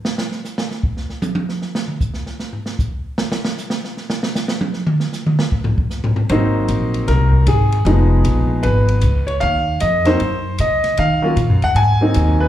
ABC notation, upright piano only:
X:1
M:4/4
L:1/8
Q:"Swing" 1/4=154
K:Abmix
V:1 name="Upright piano"
z8 | z8 | z8 | z8 |
c4 B2 A2- | A4 _c3 d | f2 e c3 e2 | f3 g a3 _c |]
V:2 name="Upright piano"
z8 | z8 | z8 | z8 |
[G,B,CE]4- [G,B,CE] z3 | [F,A,_CE]4- [F,A,CE] z3 | z3 [G,B,CE] z4 | z [G,B,DF] z3 [G,B,CE]3 |]